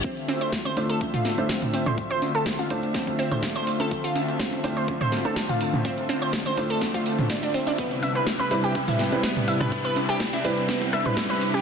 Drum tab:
HH |xxoxxxoxxxoxxxox|xxoxxxoxxxoxxxox|xxoxxxoxxxoxxxox|xxoxxxoxxxoxxxox|
SD |----o-----o-o---|----o---o---o---|----o-----o-o---|----o---o---o---|
T2 |---------o---o-o|-----------o----|---------o---o-o|-----------o----|
CG |--o--o--o--o---o|--o--o--o--o---o|--o--o--o--o---o|--o--o--o--o---o|
BD |o---o---o---o---|o---o---oo--o---|o---o---o---o---|o---o---oo--o---|

HH |xxoxxxoxxxoxxxox|xxoxxxoxxxoxxxox|
SD |----o-----o-o--r|---ro---o-r-o---|
T2 |---------o---o-o|-----------o----|
CG |--o--o--o--o---o|--o--o--o--o---o|
BD |o---o---o---o---|o---o---oo--o---|